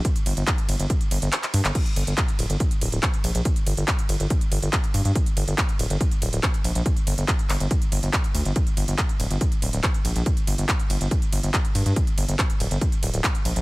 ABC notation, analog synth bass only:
X:1
M:4/4
L:1/16
Q:1/4=141
K:Gm
V:1 name="Analog synth bass" clef=bass
z2 G,,, G,,, z2 G,,, G,,, z2 G,,, G,,, z2 G,, G,,, | z2 G,,, G,,, z2 D,,, G,,, z2 D,,, D,,, z2 B,,, B,,, | z2 G,,, G,,, z2 G,,, G,,, z2 G,,, G,,, z2 G,, G,, | z2 G,,, G,,, z2 D,,, G,,, z2 D,,, D,,, z2 B,,, B,,, |
z2 G,,, G,,, z2 G,,, G,,, z2 G,,, G,,, z2 D,, G,,, | z2 G,,, G,,, z2 D,,, G,,, z2 D,,, D,,, z2 B,,, B,,, | z2 G,,, G,,, z2 G,,, G,,, z2 G,,, G,,, z2 G,, G,, | z2 G,,, G,,, z2 D,,, G,,, z2 D,,, D,,, z2 B,,, B,,, |]